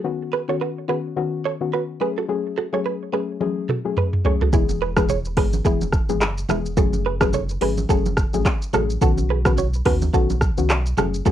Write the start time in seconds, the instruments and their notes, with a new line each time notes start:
0.04 synth pluck D#3 B3 C#4 F#4
0.33 clean electric guitar G#4 B4
0.48 synth pluck D#3 B3 C#4 F#4, clean electric guitar A4 C#5
0.61 clean electric guitar F#4 B4
0.88 synth pluck D#3 B3 C#4 F#4, clean electric guitar G#4 B4
1.16 synth pluck D#3 B3 C#4 F#4
1.45 clean electric guitar A4 C#5
1.61 synth pluck D#3 B3 C#4 F#4
1.73 clean electric guitar F#4 B4
2.00 synth pluck F#3 A3 C#4 G#4, clean electric guitar G#4 B4
2.18 clean electric guitar F#4 A4
2.28 synth pluck F#3 A3 C#4 G#4
2.58 clean electric guitar F#4 A4
2.73 synth pluck F#3 A3 C#4 G#4, clean electric guitar A4 C#5
2.86 clean electric guitar G#4 B4
3.12 synth pluck F#3 A3 C#4 G#4, clean electric guitar G#4 B4
3.40 synth pluck F#3 A3 C#4 G#4, high tom
3.69 clean electric guitar F#4 A4, mid tom
3.85 synth pluck F#3 A3 C#4 G#4
3.97 clean electric guitar G#4 B4, mid tom
4.13 mid tom
4.25 synth pluck F#3 A3 C#4 G#4, clean electric guitar A4 C#5, floor tom
4.41 clean electric guitar F#4 A4, floor tom
4.53 sub bass E1, synth pluck E3 G#3 B3 G#4, clean electric guitar E4 G#4, kick, low conga, shaker
4.69 high conga, shaker
4.82 clean electric guitar G#4 B4
4.97 synth pluck E3 G#3 B3 G#4, clean electric guitar G#4 B4, kick, cross-stick, high conga, shaker
5.09 clean electric guitar G#4 C#5, low conga, shaker
5.25 shaker
5.37 sub bass G#1, synth pluck E3 G#3 B3 G#4, clean electric guitar G#4 B4, kick, cross-stick, open hi-hat
5.53 high conga, shaker
5.65 sub bass E1, synth pluck E3 G#3 B3 G#4, clean electric guitar E4 G#4, kick, shaker
5.81 high conga, shaker
5.92 kick, cross-stick, shaker
6.09 sub bass G#1, synth pluck E3 G#3 B3 G#4, high conga, shaker
6.21 sub bass F#1, cross-stick, clap, shaker
6.38 shaker
6.49 sub bass E1, synth pluck E3 G#3 B3 G#4, clean electric guitar E4 G#4, cross-stick, high conga, low conga, shaker
6.66 shaker
6.77 sub bass F#1, synth pluck F#3 A3 C#4 G#4, clean electric guitar F#4 A4, kick, low conga, shaker
6.93 high conga, shaker
7.06 clean electric guitar G#4 B4
7.21 synth pluck F#3 A3 C#4 G#4, clean electric guitar G#4 B4, kick, cross-stick, high conga, shaker
7.33 clean electric guitar A4 C#5, low conga, shaker
7.49 shaker
7.61 sub bass G#1, synth pluck F#3 A3 C#4 G#4, clean electric guitar G#4 B4, open hi-hat
7.77 high conga, shaker
7.89 sub bass F#1, synth pluck F#3 A3 C#4 G#4, clean electric guitar F#4 A4, kick, shaker
8.06 high conga, shaker
8.17 kick, cross-stick, shaker
8.33 sub bass A1, synth pluck F#3 A3 C#4 G#4, high conga, shaker
8.45 kick, cross-stick, clap, shaker
8.62 shaker
8.73 sub bass A1, synth pluck F#3 A3 C#4 G#4, clean electric guitar F#4 A4, cross-stick, high conga, low conga, shaker
8.90 shaker
9.01 sub bass B1, synth pluck D#3 B3 C#4 F#4, clean electric guitar F#4 A4, kick, low conga, shaker
9.17 high conga, shaker
9.30 clean electric guitar G#4 B4
9.45 synth pluck D#3 B3 C#4 F#4, clean electric guitar G#4 B4, kick, cross-stick, high conga, shaker
9.57 clean electric guitar F#4 C#5, low conga, shaker
9.74 shaker
9.85 sub bass D#2, synth pluck D#3 B3 C#4 F#4, clean electric guitar G#4 B4, kick, cross-stick, open hi-hat
10.02 high conga, shaker
10.13 sub bass B1, synth pluck D#3 B3 C#4 F#4, clean electric guitar F#4 A4, kick, shaker
10.30 high conga, shaker
10.41 kick, cross-stick, shaker
10.58 sub bass C#2, synth pluck D#3 B3 C#4 F#4, high conga, shaker
10.70 sub bass B1, cross-stick, clap, shaker
10.86 shaker
10.97 sub bass F#1, synth pluck F#3 A3 C#4 G#4, clean electric guitar F#4 A4, cross-stick, high conga, low conga, shaker
11.14 shaker
11.26 sub bass F#1, synth pluck F#3 A3 C#4 G#4, clean electric guitar F#4 A4, kick, low conga, shaker